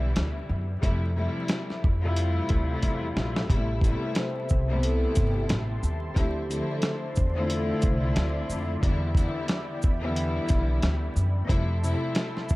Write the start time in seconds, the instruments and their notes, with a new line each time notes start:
Already playing: upright bass B1, string section D3 E3 G3 B3 E4
0.16 upright bass D2, snare, closed hi-hat
0.49 upright bass F#2
0.82 upright bass F2, string section C3 F3 G3 A3 E4, kick, closed hi-hat
1.16 string section C3 F3 G3 A3 E4
1.48 snare, closed hi-hat
1.70 snare
1.84 upright bass F2, kick
2.02 string section C3 G3 A3 E4 F4
2.17 closed hi-hat
2.49 upright bass D2, kick, closed hi-hat
2.83 upright bass E2, kick, closed hi-hat
3.16 upright bass A#1, snare
3.36 snare
3.48 upright bass A1, string section C3 G3 A3 B3 E4, vibraphone G4, analog synth pad G4 E5 A5 C6, kick, closed hi-hat
3.82 string section C3 G3 A3 B3 E4, kick, closed hi-hat, shaker
4.03 vibraphone A4
4.15 vibraphone C5, snare, closed hi-hat
4.49 upright bass C2, kick, shaker
4.69 string section C3 G3 A3 B3 E4, vibraphone C5
4.83 vibraphone A4, closed hi-hat
5.15 upright bass G1, vibraphone A4, kick, snare, closed hi-hat, shaker
5.49 upright bass A1, snare, closed hi-hat
5.83 upright bass D#2, shaker
6.15 upright bass D2, string section D3 F3 A3 C4 E4, analog synth pad D4 D5, vibraphone G4, kick, closed hi-hat
6.49 string section D3 F3 A3 C4 E4, closed hi-hat, shaker
6.71 vibraphone A4
6.82 vibraphone C5, snare, closed hi-hat
7.16 upright bass E2, kick, shaker
7.34 string section D3 A3 C4 E4 F4, vibraphone C5
7.50 vibraphone A4, closed hi-hat
7.82 upright bass C2, vibraphone C5, kick, closed hi-hat, shaker
8.16 upright bass D2, snare, closed hi-hat
8.50 upright bass F2, shaker
8.82 upright bass E2, string section D3 E3 G3 B3 E4, analog synth pad E4 G5 B5, kick, closed hi-hat
9.15 string section D3 E3 G3 B3 E4, kick, closed hi-hat, shaker
9.48 snare, closed hi-hat
9.82 upright bass E2, kick, shaker
10.01 string section D3 E3 G3 B3 E4
10.16 closed hi-hat
10.49 upright bass B1, kick, snare, closed hi-hat, shaker
10.82 upright bass D2, snare, closed hi-hat
11.16 upright bass F#2, shaker
11.48 upright bass F2, string section C3 F3 G3 A3 E4, analog synth pad A4 E5 A5 C6, kick, closed hi-hat
11.83 string section C3 F3 G3 A3 E4, shaker
12.15 snare, closed hi-hat
12.37 snare
12.49 upright bass F2, kick, shaker